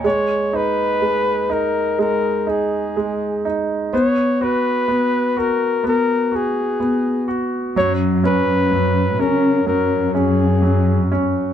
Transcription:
X:1
M:4/4
L:1/16
Q:1/4=62
K:G#m
V:1 name="Flugelhorn"
c2 B4 A2 A2 G4 z2 | c2 B4 A2 A2 G4 z2 | c2 B4 A2 A2 G4 z2 |]
V:2 name="Grand piano"
G,2 D2 G,2 D2 G,2 D2 G,2 D2 | B,2 F2 B,2 F2 B,2 F2 B,2 F2 | F,2 C2 F,2 C2 F,2 C2 F,2 C2 |]
V:3 name="Cello section" clef=bass
z16 | z16 | F,,3 F,,3 C,2 F,,8 |]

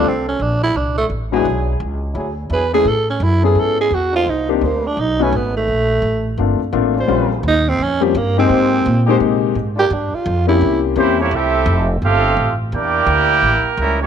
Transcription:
X:1
M:4/4
L:1/8
Q:"Swing" 1/4=170
K:F
V:1 name="Trumpet section"
z8 | z8 | z8 | z8 |
z8 | z8 | z8 | z6 [B,EGc] [B,EG_d] |
[CGAe]3 z [CGAf]3 z | [EBdg]6 [G,^CEB] [B,EG^c] |]
V:2 name="Trombone section"
[F,CDA]2 z4 z [_G,DE_A]- | [_G,DE_A]2 z2 [^F,DE^G] z [F,DEG] z | z6 z [B,D_Ec]- | [B,D_Ec]2 [B,DEc]2 z [A,^C^D=B] z2 |
z6 z [G,_DFc]- | [G,_DFc]2 z4 z [_A,_EGc]- | [_A,_EGc]2 z [A,EGc] z3 [G,DFB] | z6 z [F,G,EA]- |
[F,G,EA]2 z6 | z8 |]
V:3 name="Tenor saxophone"
C _D =D E D A, z2 | z6 =B ^G | A ^C E ^G A G _G F | _E G, B, D ^D ^C =B, A,- |
A,4 z4 | z2 _E C _D F, B, C- | C4 z3 G | D F2 E2 z3 |
z8 | z8 |]
V:4 name="Grand piano"
z6 z [_A,=B,DE_G] | z6 z [A,=B,_DE^G] | z3 [=B,^CE^GA]3 z2 | z [B,CD_EG] z3 [A,=B,^C^D^F] z2 |
z4 [A,B,CDF] z [A,B,CDF] z | [G,B,C_DF] z4 [G,B,CDG] z [_A,B,C_EG]- | [_A,B,C_EG]2 z [A,B,CEG]3 z2 | z3 [B,C_DEG]3 [B,CDEG] z |
z8 | z8 |]
V:5 name="Trombone section"
z8 | z8 | z8 | z8 |
z8 | z8 | z8 | z6 [E,G,C] [G,B,_D] |
[A,CE]3 z [A,CF]3 z | [B,DG]6 [E,G,B,] [E,G,^C] |]
V:6 name="Upright bass" clef=bass
C,,2 B,,,2 C,,2 A,,,2 | =B,,,2 _D,,2 =D,,2 E,,2 | A,,2 _G,,2 ^G,,2 E,,2 | C,,2 D,,2 =B,,,2 _A,,,2 |
B,,,2 A,,,2 G,,, z A,,,2 | B,,,2 _E,,2 F,,2 G,,2 | _A,,2 B,,2 C,2 A,,2 | G,, z F,,2 C,,2 E,,2 |
C,,2 F,,,2 G,,,2 A,,,2 | E,,2 D,,2 A,,, z ^C,,2 |]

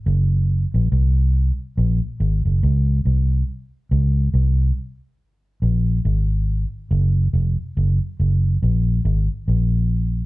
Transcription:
X:1
M:4/4
L:1/16
Q:"Swing 16ths" 1/4=70
K:Db
V:1 name="Fingered electric bass" clef=bass
G,,,3 B,,, C,,3 z B,,, z A,,, G,,, D,,2 C,,2 | z2 D,,2 C,,2 z4 B,,,2 A,,,3 z | G,,,2 F,,, z G,,, z G,,,2 B,,,2 A,,, z B,,,4 |]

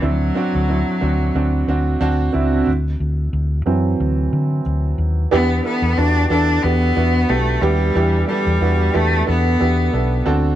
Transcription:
X:1
M:4/4
L:1/16
Q:"Swing 16ths" 1/4=91
K:Em
V:1 name="Grand piano"
[CDE]2 [CDF]2 [CDE]2 [CDF]2 [CDF]2 [CDF]2 [CDFa]2 [CDEe]2 | z16 | [B,DEG]2 [B,DEA]2 [B,DEF]2 [B,DEA]2 [B,DEG]2 [B,DEF]2 [B,DEG]2 [B,DEG]2 | [B,DEG]2 [B,DEA]2 [B,DEF]2 [B,DEG]2 [B,DEA]2 [B,DEG]2 [B,DEA]2 [CDFA]2 |]
V:2 name="Grand piano" clef=bass
z16 | z6 [E,F,C]6 z4 | E,6 z8 z2 | E,6 z8 D,2 |]
V:3 name="Cello"
F,12 z4 | z16 | B,2 B,2 D2 D2 B,4 A,2 G,2- | G,2 G,4 A,2 B,6 z2 |]
V:4 name="Fingered electric bass" clef=bass
D,,2 z D,,2 z D,,2 D,,2 D,,2 D,,2 ^C,,2 | D,,2 D,,2 D,,2 F,,2 D,,2 D,2 D,,2 ^D,,2 | E,,2 z E,, E,,2 E,,2 E,,2 E,,2 B,,,2 ^D,,2 | E,,2 z E,, E,,2 E,,2 E,,2 E,,2 B,,,2 D,,2 |]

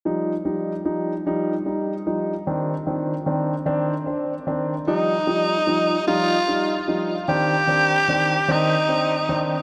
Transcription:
X:1
M:6/8
L:1/8
Q:3/8=50
K:Eb
V:1 name="Tenor saxophone"
z6 | z6 | E3 F2 z | G3 E2 z |]
V:2 name="Grand piano"
[F,G,E] [F,G,E] [F,G,E] [F,G,E] [G,E] [F,G,E] | [E,CD] [E,CD] [E,CD] [E,CD] [CD] [E,CD] | [F,G,E] [F,G,E] [F,G,E] [F,G,E] [G,E] [F,G,E] | [E,CD] [E,CD] [E,CD] [E,CD] [CD] [E,CD] |]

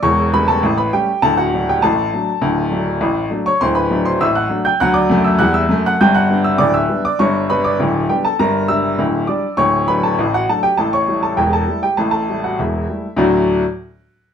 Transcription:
X:1
M:2/4
L:1/16
Q:1/4=100
K:D
V:1 name="Upright piano"
[cc']2 [Bb] [Aa]2 [Bb] [Gg]2 | [Aa] [Ff]2 [Gg] [Aa]4- | [Aa]4 z3 [cc'] | [=c=c'] [Bb]2 [cc'] [ee'] [ff']2 [gg'] |
[ff'] [dd']2 [ee'] [ff'] [ee']2 [ff'] | [gg'] [ff']2 [ee'] [dd'] [ee']2 [dd'] | [cc']2 [Bb] [dd']3 [Gg] [Aa] | [_B_b]2 [ee']4 [dd']2 |
[cc']2 [Bb] [Aa]2 [Ff] [Aa] [Gg] | [Aa] [cc']2 [Aa] [Gg] [Aa]2 [Gg] | [Aa] [Aa]2 [Ff] [Ee]4 | [D,,A,,F,A,DFd]2 z6 |]
V:2 name="Upright piano" clef=bass
[E,,,E,,]2 [G,A,C]2 [A,,,A,,]2 [G,A,C]2 | [D,,,D,,]2 [F,A,D]2 [A,,,A,,]2 [F,A,D]2 | [D,,,D,,]2 [F,A,D]2 [A,,,A,,]2 [F,A,D]2 | [D,,,D,,]2 [F,A,D]2 [A,,,A,,]2 [F,A,D]2 |
[D,,F,]2 [F,,A,]2 [E,,G,]2 [F,,A,]2 | [G,,,G,,]2 [G,B,D]2 [D,,,D,,]2 [G,B,D]2 | [G,,,G,,]2 [G,B,D]2 [D,,,D,,]2 [G,B,D]2 | [G,,,G,,]2 [G,D]2 [D,,,D,,]2 [G,D]2 |
[D,,,D,,]2 [F,A,D]2 [A,,,A,,]2 [F,A,D]2 | [A,,,A,,]2 [G,A,E]2 [E,,,E,,]2 [G,A,E]2 | [A,,,A,,]2 [G,A,E]2 [E,,,E,,]2 [G,A,E]2 | z8 |]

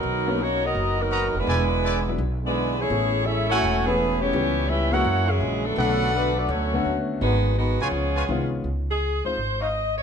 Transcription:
X:1
M:4/4
L:1/16
Q:"Swing" 1/4=167
K:Blyd
V:1 name="Trumpet section"
z12 [FBda]2 z2 | [=EB=dg]2 z2 [EBdg]2 z8 z2 | z6 [=E=Acg]6 z4 | z6 [=EAcf]6 z4 |
[=D=ABf]8- [DABf]2 z6 | z6 [EBcg]2 z2 [EBcg]2 z4 | [K:Db] z8 z2 [Ecdf]2 z4 |]
V:2 name="Saxophone section"
[F,B,DA]4 [A,DFc]2 [B,FAd]4 [F,B,DA]4 [G,=D=EB]2- | [G,=D=EB]6- [G,DEB] z3 [G,DEB]4 [=A,EGc]2- | [=A,=EGc]4 [CG=A=e]2 [EAcf]4 [A,EGB]4 [B,E=Gc]2- | [B,=E=Gc]4 [CGB=e]2 [EAcf]4 [F,CE^G]4 [F,B,=D=A]2- |
[F,B,=D=A]4 [=A,DFB]2 [B,FA=d]2 [B,FAc]4- [B,FAc] z3 | [G,DFB]4 [G,DFB]2 [B,EGc]8 z2 | [K:Db] z2 A4 c4 e4 d2 |]
V:3 name="Upright piano"
z2 [F,A,B,CD]2 z12 | z6 [F,G,B,=D=E]2 z8 | [=E,=A,B,CG]2 z8 [E,A,B,CG]6 | [=E,=G,B,C=G]6 [E,^G,A,CF]2 z8 |
[=D,=A,B,CF]2 z8 [D,A,B,CF]6 | z12 [D,G,B,CE]4 | [K:Db] z6 [A,CEF]2 z8 |]
V:4 name="Trombone section"
[D,F,A]4 C2 [F,DA]4 [D,F,A]4 [=D,G,B,]2- | [=D,G,B,]6- [D,G,B,] z3 [D,G,B,]4 [=E,CG]2- | [=E,CG]4 [G,C=E]2 [=A,CF]4 [E,B,G]4 [E,=G,C]2- | [=E,=G,C]4 [G,B,=E]2 [A,CF]4 [C,E,^G,]4 [=D,F,=A,]2- |
[=D,F,=A,]4 [D,F,B,]2 [F,A,=D]2 [F,A,C]4- [F,A,C] z3 | [D,F,B,]4 [D,F,B,]2 [E,G,C]8 z2 | [K:Db] z16 |]
V:5 name="Upright bass" clef=bass
B,,,8 F,,,6 E,,,2 | =E,,,8 B,,,8 | =A,,,8 =E,,,8 | C,,8 F,,4 A,,,4 |
B,,,8 =D,,4 ^D,,4 | G,,,6 ^B,,,2 C,,4 B,,,4 | [K:Db] D,,6 =D,,2 A,,,8 |]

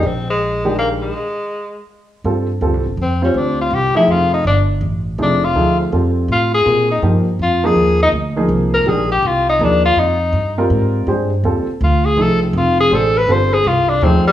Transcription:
X:1
M:3/4
L:1/8
Q:"Swing" 1/4=163
K:Gphr
V:1 name="Tenor saxophone"
C A,3 B, A,- | A,4 z2 | z4 C ^C | D F G =E F _E |
D z3 D F- | F C z2 F A- | A E z2 F A- | A E z3 B |
A G F E D F | E4 z2 | z4 F A | =A C F _A =A =B |
c A F D C G, |]
V:2 name="Grand piano"
z3 [E,A,DG]3 | z6 | [G,CF=A] z [G,CFA] z2 [G,CFc]- | [G,CFc]2 z [F,=A,E_A]3 |
z4 [F,=A,E_A] z | [F,=A,E_A]2 [G,CF=A]3 z | [G,CFB] z [F,B,EG] z2 [F,B,EA]- | [F,B,EA]2 z [F,B,EA]3 |
[E,A,DG] z3 [F,B,EA] z | z3 [G,CFB]3 | [A,DGc] z [G,CF=A] z3 | [F,=A,E_A]3 z [_A,DGc] z |
[G,CF=A] z3 [F,=A,E_A] z |]
V:3 name="Upright bass" clef=bass
B,,,6 | z6 | G,,2 (3D,, C,, G,,, F,,2 | D,,2 C,, z F,,,2 |
G,,,2 =A,,,2 F,,,2 | D,,2 F,,2 =A,,2 | B,,2 G,,2 F,,2 | E,,2 D,,2 C,,2 |
B,,,2 C,,2 E,,2 | F,,2 G,,2 A,,2 | G,,2 E,, z D,,2 | C,,2 F,,,2 =A,,,2 |
G,,,2 C,,2 E,, z |]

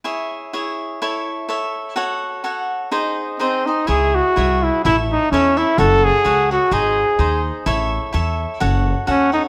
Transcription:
X:1
M:2/4
L:1/8
Q:"Swing" 1/4=126
K:C#m
V:1 name="Cavaquinho"
[EGce]2 [EGce]2 | [EAce]2 [EAce]2 | [FAcf]2 [FAcf]2 | [DG^Bd]2 [DGBd] [GBd] |
[EGce]2 [EGce]2 | [EAce]2 [EAce] [Ace] | [FAcf]2 [FAcf] [Acf] | [DG^Bd]2 [DGBd]2 |
[EAce]2 [EAce]2 | [FAcf]2 [FAcf] [Acf] |]
V:2 name="Trumpet"
z4 | z4 | z4 | z2 ^B, D |
G F2 E | E D C E | A G2 F | G3 z |
z4 | z2 C D |]
V:3 name="Upright bass" clef=bass
z4 | z4 | z4 | z4 |
C,,2 ^B,,,2 | A,,,2 E,,2 | F,,,2 C,,2 | G,,,2 D,,2 |
A,,,2 E,,2 | F,,,2 D,,2 |]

